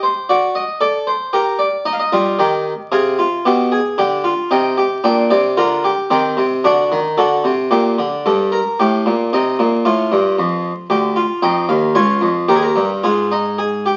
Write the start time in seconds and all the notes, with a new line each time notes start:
0.03 C5
0.29 F#4 D5
0.55 D#5
0.81 A4 D5
1.07 C5
1.33 G4 A#4
1.59 D5
1.85 D#4 D#5
1.93 F5
2.00 D#5
2.12 G3 F4
2.39 D#3 G4
2.92 C3 G#4 F5
3.19 F4
3.45 B2 G4
3.72 G#4
3.98 D3 G4
4.24 F4
4.51 C3 D#4 G5
4.77 G4
5.04 A#2 D4 G5
5.30 C3 D5
5.57 D3 F4 A#4
5.84 G4
6.10 D#3 C4 G4
6.37 C3
6.64 D3 D4 F#4
6.92 D#3
7.17 D3 F#4 A4
7.44 C3
7.71 A#2 G4
7.98 D3
8.26 G2 A4
8.52 A#4
8.80 A2 G4
9.06 A#2
9.33 C3 D#4
9.59 A#2
9.85 A2 F4
10.12 G2
10.38 F2
10.90 D2 G4
11.16 F4
11.42 F2 D#4 G5
11.69 D#2 F5
11.95 C#2 F4 C#5
12.21 F2
12.48 D#2 G4 A#4
12.56 G#4
12.62 A#4
12.76 G2
13.04 G#2 F4 G#4
13.32 D#4
13.58 G#4
13.86 G4